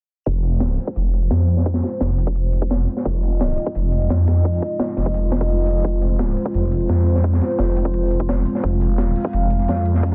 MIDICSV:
0, 0, Header, 1, 4, 480
1, 0, Start_track
1, 0, Key_signature, -4, "minor"
1, 0, Tempo, 348837
1, 363, Time_signature, 4, 2, 24, 8
1, 13964, End_track
2, 0, Start_track
2, 0, Title_t, "Analog synth pad"
2, 0, Program_c, 0, 89
2, 363, Note_on_c, 0, 56, 76
2, 363, Note_on_c, 0, 60, 69
2, 363, Note_on_c, 0, 65, 70
2, 363, Note_on_c, 0, 72, 85
2, 4188, Note_off_c, 0, 72, 0
2, 4203, Note_on_c, 0, 75, 84
2, 8028, Note_off_c, 0, 75, 0
2, 8043, Note_on_c, 0, 72, 85
2, 11868, Note_off_c, 0, 72, 0
2, 11884, Note_on_c, 0, 77, 85
2, 13964, Note_off_c, 0, 56, 0
2, 13964, Note_off_c, 0, 60, 0
2, 13964, Note_off_c, 0, 65, 0
2, 13964, Note_off_c, 0, 77, 0
2, 13964, End_track
3, 0, Start_track
3, 0, Title_t, "Detuned saw bass"
3, 0, Program_c, 1, 39
3, 363, Note_on_c, 1, 29, 96
3, 1064, Note_off_c, 1, 29, 0
3, 1323, Note_on_c, 1, 29, 93
3, 1784, Note_off_c, 1, 29, 0
3, 1803, Note_on_c, 1, 41, 95
3, 2504, Note_off_c, 1, 41, 0
3, 2762, Note_on_c, 1, 29, 93
3, 3943, Note_off_c, 1, 29, 0
3, 4202, Note_on_c, 1, 29, 95
3, 4903, Note_off_c, 1, 29, 0
3, 5162, Note_on_c, 1, 29, 93
3, 5623, Note_off_c, 1, 29, 0
3, 5642, Note_on_c, 1, 41, 97
3, 6343, Note_off_c, 1, 41, 0
3, 6842, Note_on_c, 1, 29, 98
3, 8023, Note_off_c, 1, 29, 0
3, 8043, Note_on_c, 1, 29, 94
3, 8744, Note_off_c, 1, 29, 0
3, 9003, Note_on_c, 1, 29, 91
3, 9464, Note_off_c, 1, 29, 0
3, 9483, Note_on_c, 1, 41, 92
3, 10184, Note_off_c, 1, 41, 0
3, 10442, Note_on_c, 1, 29, 96
3, 11623, Note_off_c, 1, 29, 0
3, 11883, Note_on_c, 1, 29, 93
3, 12584, Note_off_c, 1, 29, 0
3, 12843, Note_on_c, 1, 29, 94
3, 13303, Note_off_c, 1, 29, 0
3, 13323, Note_on_c, 1, 41, 97
3, 13964, Note_off_c, 1, 41, 0
3, 13964, End_track
4, 0, Start_track
4, 0, Title_t, "Drums"
4, 360, Note_on_c, 9, 42, 78
4, 362, Note_off_c, 9, 42, 0
4, 362, Note_on_c, 9, 42, 93
4, 363, Note_on_c, 9, 36, 116
4, 500, Note_off_c, 9, 36, 0
4, 500, Note_off_c, 9, 42, 0
4, 594, Note_on_c, 9, 42, 59
4, 602, Note_off_c, 9, 42, 0
4, 602, Note_on_c, 9, 42, 64
4, 740, Note_off_c, 9, 42, 0
4, 828, Note_on_c, 9, 38, 103
4, 842, Note_on_c, 9, 42, 93
4, 844, Note_off_c, 9, 42, 0
4, 844, Note_on_c, 9, 42, 83
4, 966, Note_off_c, 9, 38, 0
4, 982, Note_off_c, 9, 42, 0
4, 1083, Note_on_c, 9, 42, 67
4, 1089, Note_on_c, 9, 46, 80
4, 1202, Note_on_c, 9, 36, 98
4, 1220, Note_off_c, 9, 42, 0
4, 1226, Note_off_c, 9, 46, 0
4, 1320, Note_on_c, 9, 42, 81
4, 1323, Note_off_c, 9, 42, 0
4, 1323, Note_on_c, 9, 42, 92
4, 1340, Note_off_c, 9, 36, 0
4, 1460, Note_off_c, 9, 42, 0
4, 1563, Note_on_c, 9, 42, 65
4, 1566, Note_off_c, 9, 42, 0
4, 1566, Note_on_c, 9, 42, 62
4, 1683, Note_off_c, 9, 42, 0
4, 1683, Note_on_c, 9, 42, 37
4, 1794, Note_off_c, 9, 42, 0
4, 1794, Note_on_c, 9, 42, 81
4, 1798, Note_on_c, 9, 38, 99
4, 1803, Note_off_c, 9, 42, 0
4, 1803, Note_on_c, 9, 42, 87
4, 1920, Note_off_c, 9, 38, 0
4, 1920, Note_on_c, 9, 38, 38
4, 1923, Note_off_c, 9, 42, 0
4, 1923, Note_on_c, 9, 42, 35
4, 2036, Note_off_c, 9, 42, 0
4, 2036, Note_on_c, 9, 42, 65
4, 2043, Note_off_c, 9, 42, 0
4, 2043, Note_on_c, 9, 42, 65
4, 2058, Note_off_c, 9, 38, 0
4, 2161, Note_on_c, 9, 38, 41
4, 2180, Note_off_c, 9, 42, 0
4, 2277, Note_on_c, 9, 42, 80
4, 2283, Note_off_c, 9, 42, 0
4, 2283, Note_on_c, 9, 36, 116
4, 2283, Note_on_c, 9, 42, 91
4, 2299, Note_off_c, 9, 38, 0
4, 2391, Note_on_c, 9, 38, 52
4, 2402, Note_off_c, 9, 42, 0
4, 2402, Note_on_c, 9, 42, 36
4, 2420, Note_off_c, 9, 36, 0
4, 2518, Note_off_c, 9, 42, 0
4, 2518, Note_on_c, 9, 42, 66
4, 2522, Note_off_c, 9, 38, 0
4, 2522, Note_off_c, 9, 42, 0
4, 2522, Note_on_c, 9, 38, 47
4, 2522, Note_on_c, 9, 42, 61
4, 2660, Note_off_c, 9, 38, 0
4, 2660, Note_off_c, 9, 42, 0
4, 2761, Note_on_c, 9, 38, 100
4, 2761, Note_on_c, 9, 42, 77
4, 2762, Note_off_c, 9, 42, 0
4, 2762, Note_on_c, 9, 42, 90
4, 2898, Note_off_c, 9, 38, 0
4, 2900, Note_off_c, 9, 42, 0
4, 3003, Note_on_c, 9, 42, 65
4, 3004, Note_off_c, 9, 42, 0
4, 3004, Note_on_c, 9, 42, 75
4, 3122, Note_on_c, 9, 36, 103
4, 3141, Note_off_c, 9, 42, 0
4, 3242, Note_on_c, 9, 42, 88
4, 3260, Note_off_c, 9, 36, 0
4, 3380, Note_off_c, 9, 42, 0
4, 3483, Note_on_c, 9, 42, 63
4, 3487, Note_off_c, 9, 42, 0
4, 3487, Note_on_c, 9, 42, 60
4, 3603, Note_off_c, 9, 42, 0
4, 3603, Note_on_c, 9, 36, 102
4, 3603, Note_on_c, 9, 42, 36
4, 3714, Note_off_c, 9, 42, 0
4, 3714, Note_on_c, 9, 42, 84
4, 3723, Note_off_c, 9, 42, 0
4, 3723, Note_on_c, 9, 42, 86
4, 3725, Note_on_c, 9, 38, 104
4, 3740, Note_off_c, 9, 36, 0
4, 3843, Note_off_c, 9, 42, 0
4, 3843, Note_on_c, 9, 42, 36
4, 3862, Note_off_c, 9, 38, 0
4, 3961, Note_off_c, 9, 42, 0
4, 3961, Note_on_c, 9, 42, 61
4, 3963, Note_off_c, 9, 42, 0
4, 3963, Note_on_c, 9, 42, 63
4, 4083, Note_on_c, 9, 38, 43
4, 4100, Note_off_c, 9, 42, 0
4, 4199, Note_on_c, 9, 42, 86
4, 4202, Note_on_c, 9, 36, 115
4, 4203, Note_off_c, 9, 42, 0
4, 4203, Note_on_c, 9, 42, 89
4, 4220, Note_off_c, 9, 38, 0
4, 4340, Note_off_c, 9, 36, 0
4, 4340, Note_off_c, 9, 42, 0
4, 4443, Note_on_c, 9, 42, 60
4, 4445, Note_off_c, 9, 42, 0
4, 4445, Note_on_c, 9, 42, 66
4, 4582, Note_off_c, 9, 42, 0
4, 4683, Note_on_c, 9, 42, 89
4, 4687, Note_off_c, 9, 42, 0
4, 4687, Note_on_c, 9, 42, 81
4, 4688, Note_on_c, 9, 38, 112
4, 4825, Note_off_c, 9, 38, 0
4, 4825, Note_off_c, 9, 42, 0
4, 4917, Note_on_c, 9, 46, 72
4, 4923, Note_on_c, 9, 42, 63
4, 5042, Note_on_c, 9, 36, 103
4, 5054, Note_off_c, 9, 46, 0
4, 5061, Note_off_c, 9, 42, 0
4, 5159, Note_on_c, 9, 42, 78
4, 5163, Note_off_c, 9, 42, 0
4, 5163, Note_on_c, 9, 42, 88
4, 5180, Note_off_c, 9, 36, 0
4, 5300, Note_off_c, 9, 42, 0
4, 5396, Note_on_c, 9, 42, 62
4, 5403, Note_off_c, 9, 42, 0
4, 5403, Note_on_c, 9, 42, 62
4, 5523, Note_off_c, 9, 42, 0
4, 5523, Note_on_c, 9, 42, 35
4, 5637, Note_off_c, 9, 42, 0
4, 5637, Note_on_c, 9, 42, 85
4, 5643, Note_off_c, 9, 42, 0
4, 5643, Note_on_c, 9, 42, 84
4, 5645, Note_on_c, 9, 38, 106
4, 5763, Note_off_c, 9, 42, 0
4, 5763, Note_on_c, 9, 42, 35
4, 5766, Note_off_c, 9, 38, 0
4, 5766, Note_on_c, 9, 38, 34
4, 5880, Note_off_c, 9, 42, 0
4, 5880, Note_on_c, 9, 42, 72
4, 5883, Note_off_c, 9, 42, 0
4, 5883, Note_on_c, 9, 42, 62
4, 5885, Note_off_c, 9, 38, 0
4, 5885, Note_on_c, 9, 38, 100
4, 6020, Note_off_c, 9, 42, 0
4, 6023, Note_off_c, 9, 38, 0
4, 6122, Note_on_c, 9, 42, 85
4, 6123, Note_on_c, 9, 36, 117
4, 6130, Note_on_c, 9, 46, 73
4, 6243, Note_off_c, 9, 42, 0
4, 6243, Note_on_c, 9, 42, 34
4, 6260, Note_off_c, 9, 36, 0
4, 6267, Note_off_c, 9, 46, 0
4, 6362, Note_on_c, 9, 36, 62
4, 6363, Note_off_c, 9, 42, 0
4, 6363, Note_on_c, 9, 42, 59
4, 6365, Note_off_c, 9, 42, 0
4, 6365, Note_on_c, 9, 42, 72
4, 6500, Note_off_c, 9, 36, 0
4, 6502, Note_off_c, 9, 42, 0
4, 6598, Note_on_c, 9, 38, 110
4, 6603, Note_on_c, 9, 42, 84
4, 6607, Note_off_c, 9, 42, 0
4, 6607, Note_on_c, 9, 42, 82
4, 6736, Note_off_c, 9, 38, 0
4, 6744, Note_off_c, 9, 42, 0
4, 6836, Note_on_c, 9, 38, 47
4, 6843, Note_on_c, 9, 42, 60
4, 6963, Note_on_c, 9, 36, 102
4, 6974, Note_off_c, 9, 38, 0
4, 6980, Note_off_c, 9, 42, 0
4, 7075, Note_on_c, 9, 42, 91
4, 7083, Note_off_c, 9, 42, 0
4, 7083, Note_on_c, 9, 42, 86
4, 7100, Note_off_c, 9, 36, 0
4, 7220, Note_off_c, 9, 42, 0
4, 7316, Note_on_c, 9, 38, 91
4, 7319, Note_on_c, 9, 42, 81
4, 7323, Note_off_c, 9, 42, 0
4, 7323, Note_on_c, 9, 36, 61
4, 7323, Note_on_c, 9, 42, 57
4, 7443, Note_off_c, 9, 36, 0
4, 7443, Note_off_c, 9, 42, 0
4, 7443, Note_on_c, 9, 36, 102
4, 7443, Note_on_c, 9, 42, 33
4, 7454, Note_off_c, 9, 38, 0
4, 7562, Note_on_c, 9, 46, 69
4, 7563, Note_off_c, 9, 42, 0
4, 7563, Note_on_c, 9, 42, 83
4, 7580, Note_off_c, 9, 36, 0
4, 7683, Note_off_c, 9, 42, 0
4, 7683, Note_on_c, 9, 42, 34
4, 7700, Note_off_c, 9, 46, 0
4, 7801, Note_off_c, 9, 42, 0
4, 7801, Note_on_c, 9, 42, 82
4, 7803, Note_off_c, 9, 42, 0
4, 7803, Note_on_c, 9, 42, 60
4, 7940, Note_off_c, 9, 42, 0
4, 8043, Note_on_c, 9, 36, 114
4, 8043, Note_on_c, 9, 42, 85
4, 8044, Note_off_c, 9, 42, 0
4, 8044, Note_on_c, 9, 42, 82
4, 8180, Note_off_c, 9, 36, 0
4, 8182, Note_off_c, 9, 42, 0
4, 8283, Note_on_c, 9, 42, 65
4, 8421, Note_off_c, 9, 42, 0
4, 8515, Note_on_c, 9, 42, 82
4, 8521, Note_on_c, 9, 38, 118
4, 8523, Note_off_c, 9, 42, 0
4, 8523, Note_on_c, 9, 42, 83
4, 8659, Note_off_c, 9, 38, 0
4, 8660, Note_off_c, 9, 42, 0
4, 8755, Note_on_c, 9, 46, 79
4, 8763, Note_on_c, 9, 42, 61
4, 8883, Note_on_c, 9, 36, 100
4, 8893, Note_off_c, 9, 46, 0
4, 8901, Note_off_c, 9, 42, 0
4, 9003, Note_on_c, 9, 42, 89
4, 9011, Note_off_c, 9, 42, 0
4, 9011, Note_on_c, 9, 42, 78
4, 9020, Note_off_c, 9, 36, 0
4, 9149, Note_off_c, 9, 42, 0
4, 9238, Note_on_c, 9, 42, 66
4, 9243, Note_off_c, 9, 42, 0
4, 9243, Note_on_c, 9, 42, 61
4, 9364, Note_off_c, 9, 42, 0
4, 9364, Note_on_c, 9, 42, 34
4, 9484, Note_off_c, 9, 42, 0
4, 9484, Note_on_c, 9, 42, 85
4, 9486, Note_on_c, 9, 38, 100
4, 9490, Note_off_c, 9, 42, 0
4, 9490, Note_on_c, 9, 42, 76
4, 9604, Note_off_c, 9, 42, 0
4, 9604, Note_on_c, 9, 42, 34
4, 9613, Note_off_c, 9, 38, 0
4, 9613, Note_on_c, 9, 38, 37
4, 9721, Note_off_c, 9, 42, 0
4, 9721, Note_on_c, 9, 42, 68
4, 9723, Note_off_c, 9, 42, 0
4, 9723, Note_on_c, 9, 42, 61
4, 9750, Note_off_c, 9, 38, 0
4, 9838, Note_on_c, 9, 38, 44
4, 9861, Note_off_c, 9, 42, 0
4, 9963, Note_on_c, 9, 36, 111
4, 9963, Note_on_c, 9, 42, 89
4, 9968, Note_off_c, 9, 42, 0
4, 9968, Note_on_c, 9, 42, 77
4, 9976, Note_off_c, 9, 38, 0
4, 10083, Note_off_c, 9, 42, 0
4, 10083, Note_on_c, 9, 42, 35
4, 10092, Note_on_c, 9, 38, 49
4, 10101, Note_off_c, 9, 36, 0
4, 10203, Note_off_c, 9, 42, 0
4, 10203, Note_on_c, 9, 42, 61
4, 10204, Note_off_c, 9, 42, 0
4, 10204, Note_on_c, 9, 42, 64
4, 10209, Note_off_c, 9, 38, 0
4, 10209, Note_on_c, 9, 38, 51
4, 10342, Note_off_c, 9, 42, 0
4, 10347, Note_off_c, 9, 38, 0
4, 10438, Note_on_c, 9, 38, 102
4, 10443, Note_on_c, 9, 42, 88
4, 10445, Note_off_c, 9, 42, 0
4, 10445, Note_on_c, 9, 42, 81
4, 10576, Note_off_c, 9, 38, 0
4, 10582, Note_off_c, 9, 42, 0
4, 10683, Note_on_c, 9, 42, 63
4, 10684, Note_off_c, 9, 42, 0
4, 10684, Note_on_c, 9, 42, 83
4, 10803, Note_on_c, 9, 36, 95
4, 10821, Note_off_c, 9, 42, 0
4, 10923, Note_on_c, 9, 42, 89
4, 10940, Note_off_c, 9, 36, 0
4, 11061, Note_off_c, 9, 42, 0
4, 11154, Note_on_c, 9, 42, 60
4, 11163, Note_off_c, 9, 42, 0
4, 11163, Note_on_c, 9, 42, 62
4, 11283, Note_off_c, 9, 42, 0
4, 11283, Note_on_c, 9, 36, 96
4, 11283, Note_on_c, 9, 42, 36
4, 11403, Note_off_c, 9, 42, 0
4, 11403, Note_on_c, 9, 42, 88
4, 11406, Note_on_c, 9, 38, 113
4, 11412, Note_off_c, 9, 42, 0
4, 11412, Note_on_c, 9, 42, 84
4, 11420, Note_off_c, 9, 36, 0
4, 11523, Note_off_c, 9, 42, 0
4, 11523, Note_on_c, 9, 42, 34
4, 11544, Note_off_c, 9, 38, 0
4, 11640, Note_off_c, 9, 42, 0
4, 11640, Note_on_c, 9, 42, 61
4, 11643, Note_off_c, 9, 42, 0
4, 11643, Note_on_c, 9, 42, 61
4, 11766, Note_on_c, 9, 38, 42
4, 11781, Note_off_c, 9, 42, 0
4, 11883, Note_on_c, 9, 36, 109
4, 11883, Note_on_c, 9, 42, 93
4, 11889, Note_off_c, 9, 42, 0
4, 11889, Note_on_c, 9, 42, 77
4, 11903, Note_off_c, 9, 38, 0
4, 12020, Note_off_c, 9, 36, 0
4, 12027, Note_off_c, 9, 42, 0
4, 12123, Note_on_c, 9, 42, 64
4, 12130, Note_off_c, 9, 42, 0
4, 12130, Note_on_c, 9, 42, 65
4, 12268, Note_off_c, 9, 42, 0
4, 12358, Note_on_c, 9, 38, 100
4, 12363, Note_on_c, 9, 42, 93
4, 12364, Note_off_c, 9, 42, 0
4, 12364, Note_on_c, 9, 42, 77
4, 12495, Note_off_c, 9, 38, 0
4, 12502, Note_off_c, 9, 42, 0
4, 12603, Note_on_c, 9, 42, 66
4, 12608, Note_on_c, 9, 46, 80
4, 12723, Note_on_c, 9, 36, 94
4, 12741, Note_off_c, 9, 42, 0
4, 12745, Note_off_c, 9, 46, 0
4, 12838, Note_on_c, 9, 42, 81
4, 12843, Note_off_c, 9, 42, 0
4, 12843, Note_on_c, 9, 42, 90
4, 12860, Note_off_c, 9, 36, 0
4, 12981, Note_off_c, 9, 42, 0
4, 13073, Note_on_c, 9, 42, 64
4, 13083, Note_off_c, 9, 42, 0
4, 13083, Note_on_c, 9, 42, 65
4, 13202, Note_off_c, 9, 42, 0
4, 13202, Note_on_c, 9, 42, 36
4, 13322, Note_off_c, 9, 42, 0
4, 13322, Note_on_c, 9, 42, 74
4, 13323, Note_off_c, 9, 42, 0
4, 13323, Note_on_c, 9, 42, 91
4, 13332, Note_on_c, 9, 38, 103
4, 13430, Note_off_c, 9, 38, 0
4, 13430, Note_on_c, 9, 38, 34
4, 13443, Note_off_c, 9, 42, 0
4, 13443, Note_on_c, 9, 42, 36
4, 13559, Note_off_c, 9, 42, 0
4, 13559, Note_on_c, 9, 42, 64
4, 13563, Note_off_c, 9, 42, 0
4, 13563, Note_on_c, 9, 42, 66
4, 13568, Note_off_c, 9, 38, 0
4, 13680, Note_on_c, 9, 38, 40
4, 13701, Note_off_c, 9, 42, 0
4, 13803, Note_on_c, 9, 36, 112
4, 13803, Note_on_c, 9, 42, 91
4, 13808, Note_off_c, 9, 42, 0
4, 13808, Note_on_c, 9, 42, 87
4, 13818, Note_off_c, 9, 38, 0
4, 13940, Note_off_c, 9, 36, 0
4, 13946, Note_off_c, 9, 42, 0
4, 13964, End_track
0, 0, End_of_file